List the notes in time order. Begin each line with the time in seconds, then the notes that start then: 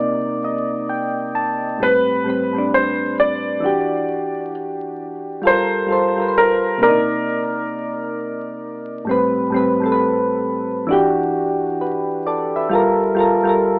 Already playing: C3 A#3 D#4 D5
0.44 D#5
0.89 G5
1.35 A5
1.78 A2 G3 C4
1.83 B4
2.24 A2 G3 C4
2.30 B4
2.53 A2 G3 C4
2.58 D4
2.74 C5
3.20 D5
3.60 E3 D4 F#4
3.66 G4
5.42 G3 F4 A4
5.47 A#4 C5
5.87 G3 F4 A4
5.92 C5
6.16 G3 F4 A#4
6.22 B4
6.28 C5
6.38 A#4
6.78 C3 A#3 D4
6.83 A#4 D5
6.88 D#4
9.05 A2 G3
9.09 C4 B4
9.50 A2 G3
9.54 C4 B4
9.80 A2 G3 C4
9.86 A4
9.92 B4
10.87 E3 D4 F#4
10.93 G4
11.81 F#4 B4
12.26 A4 D5
12.56 B4 E5
12.69 G3 F4 A4
12.75 A#4
13.15 G3 F4 A4
13.20 A#4
13.44 G3 F4 A4
13.49 A#4